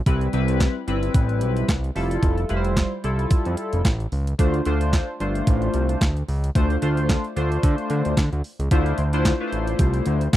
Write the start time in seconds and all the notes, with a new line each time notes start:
0.06 C2 G3 C4 E4 B4, kick, closed hi-hat
0.21 closed hi-hat
0.33 C2 G3 C4 E4 B4, closed hi-hat
0.48 closed hi-hat
0.60 kick, snare, clap, closed hi-hat
0.87 G1 G3 C4 E4 B4, closed hi-hat
1.03 closed hi-hat
1.14 A1, kick, closed hi-hat
1.29 closed hi-hat
1.41 B1, closed hi-hat
1.57 closed hi-hat
1.69 C2, kick, snare, clap, closed hi-hat
1.84 closed hi-hat
1.95 F1 G3 E4 F4 A4, open hi-hat
2.11 closed hi-hat
2.23 F1, kick, closed hi-hat
2.38 closed hi-hat
2.49 F1 G3 E4 F4 B4, closed hi-hat
2.56 C5
2.65 closed hi-hat
2.77 kick, snare, clap, closed hi-hat
3.03 C2 G3 E4 F4 A4, closed hi-hat
3.19 closed hi-hat
3.31 F2, kick, closed hi-hat
3.45 F2, closed hi-hat
3.57 closed hi-hat
3.73 F1, closed hi-hat
3.85 A1, kick, snare, clap, closed hi-hat
4.00 closed hi-hat
4.12 C#2, open hi-hat
4.27 closed hi-hat
4.38 D2 A3 D4 F4 C5, kick, closed hi-hat
4.54 closed hi-hat
4.65 D2 A3 D4 F4 C5, closed hi-hat
4.81 closed hi-hat
4.93 kick, snare, clap, closed hi-hat
5.20 G1 A3 D4 F4 C5, closed hi-hat
5.35 closed hi-hat
5.47 A1, kick, closed hi-hat
5.62 closed hi-hat
5.74 C2, closed hi-hat
5.89 closed hi-hat
6.01 D2, kick, snare, clap, closed hi-hat
6.17 closed hi-hat
6.28 C#2, open hi-hat
6.44 closed hi-hat
6.55 D2 A3 D4 F4 C5, kick, closed hi-hat
6.70 closed hi-hat
6.82 D2 A3 D4 F4 C5, closed hi-hat
6.97 closed hi-hat
7.09 kick, snare, clap, closed hi-hat
7.24 closed hi-hat
7.36 D2 A3 D4 F4 C5, closed hi-hat
7.52 closed hi-hat
7.63 D3, kick, closed hi-hat
7.78 closed hi-hat
7.90 D3, closed hi-hat
8.05 D2, closed hi-hat
8.17 D3, kick, snare, clap, closed hi-hat
8.33 D2, closed hi-hat
8.44 open hi-hat
8.59 C#2, closed hi-hat
8.71 D2 A3 D4 E4 F4 C5, kick, closed hi-hat
8.86 closed hi-hat
8.98 D2, closed hi-hat
9.13 A3 D4 E4 F4 C5, closed hi-hat
9.25 kick, snare, clap, closed hi-hat
9.40 A3 D4 E4 F4 B4
9.47 C5
9.53 A1, closed hi-hat
9.67 closed hi-hat
9.79 C2, kick, closed hi-hat
9.94 closed hi-hat
10.06 D2, closed hi-hat
10.21 closed hi-hat
10.33 F2, kick, snare, closed hi-hat